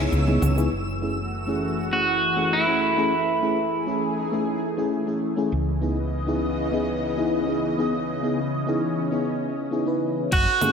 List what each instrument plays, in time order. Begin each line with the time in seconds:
Already playing: analog synth pad C#3 E3 C#4 C#5, fm electric piano B3 D#4, synth texture E6
0.00 fm electric piano E4 G#4
0.12 fretless electric bass C#2, cabasa
0.27 fm electric piano B3 D#4 E4 G#4, high conga, low conga
0.42 fretless electric bass C#2, low conga, cabasa
0.56 fm electric piano B3 D#4 E4 G#4, cabasa
0.71 fretless electric bass F#1, analog synth pad E3 A3 F#4
1.02 fm electric piano A3 C#4 E4 G#4
1.47 fm electric piano A3 C#4 E4 G#4
1.92 fm electric piano A3 C#4 E4 G#4, clean electric guitar F#4
2.36 fm electric piano A3 C#4 E4 G#4
2.53 clean electric guitar E4
2.66 fm electric piano A3 C#4 E4 G#4
2.97 fm electric piano A3 C#4 E4 G#4
3.11 analog synth pad G#4
3.42 fm electric piano A3 C#4 E4 G#4
3.86 fm electric piano A3 C#4 E4 G#4
4.19 clean electric guitar D#4
4.32 fm electric piano A3 C#4 E4 G#4
4.77 fm electric piano A3 C#4 E4 G#4
5.07 fm electric piano A3 C#4 E4 G#4
5.37 fm electric piano A3 C#4 E4 G#4
5.52 fretless electric bass C#2, analog synth pad C#3 E3 B3 D#5
5.81 fm electric piano B3 D#4 E4 G#4
6.27 fm electric piano B3 D#4 E4 G#4
6.72 fm electric piano B3 D#4 E4 G#4
7.17 fm electric piano B3 D#4 E4 G#4
7.46 fm electric piano B3 D#4 E4 G#4
7.78 fm electric piano B3 D#4 E4 G#4
7.92 analog synth pad C#4
8.22 fm electric piano B3 D#4 E4 G#4
8.67 fm electric piano B3 D#4 E4 G#4
9.11 fm electric piano B3 D#4 E4 G#4
9.71 fm electric piano B3 D#4 E4 G#4
9.85 fm electric piano B3 D#4 E4 B4
10.31 fretless electric bass F#1, analog synth pad E3 A3 F#4 G#5, clean electric guitar F#4, kick, crash, cabasa
10.61 fm electric piano A3 C#4 E4 G#4, high conga, low conga, cabasa